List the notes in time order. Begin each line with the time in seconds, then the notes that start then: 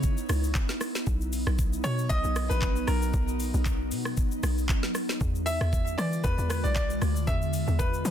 Already playing: C#3 B3 D#4 E4 C#5, downlifter
0.03 kick, shaker
0.17 shaker
0.29 C#2, cross-stick, open hi-hat, shaker
0.44 shaker
0.55 kick, clap, shaker
0.69 snare, shaker
0.81 cross-stick, open hi-hat, shaker
0.95 snare, shaker
1.07 B1 F#3 B3 D#4, kick, shaker
1.21 shaker
1.33 open hi-hat, shaker
1.47 B1, cross-stick, shaker
1.59 kick, shaker
1.73 shaker
1.84 B2 C#5, cross-stick, open hi-hat, shaker
1.98 shaker
2.09 B1 D#5, kick, shaker
2.24 B1, shaker
2.36 cross-stick, open hi-hat, shaker
2.49 A#1 B4, shaker
2.62 kick, clap, shaker
2.76 shaker
2.87 B1 A#4, cross-stick, open hi-hat, shaker
3.02 shaker
3.14 B1, kick, shaker
3.28 shaker
3.40 open hi-hat, shaker
3.54 B1, shaker
3.65 kick, clap, shaker
3.91 B2, open hi-hat, shaker
4.05 cross-stick, shaker
4.17 kick, shaker
4.31 shaker
4.43 B1, cross-stick, open hi-hat, shaker
4.58 shaker
4.69 kick, clap, shaker
4.83 snare, shaker
4.95 D3 G#3 F4, cross-stick, open hi-hat, shaker
5.09 snare, shaker
5.21 E2, kick, shaker
5.35 shaker
5.46 E5, open hi-hat, shaker
5.61 E2, cross-stick, shaker
5.73 kick, shaker
5.87 shaker
5.98 E3 D5, cross-stick, open hi-hat, shaker
6.13 shaker
6.24 E2 B4, kick, shaker
6.38 E2, shaker
6.49 B4, cross-stick, open hi-hat, shaker
6.64 B1 D5, shaker
6.75 D5, kick, clap, shaker
6.90 shaker
7.02 D2, cross-stick, open hi-hat, shaker
7.16 shaker
7.27 E2 E5, kick, shaker
7.42 shaker
7.53 open hi-hat, shaker
7.68 E2, shaker
7.79 B4, kick, shaker
7.94 shaker
8.05 E3, open hi-hat, shaker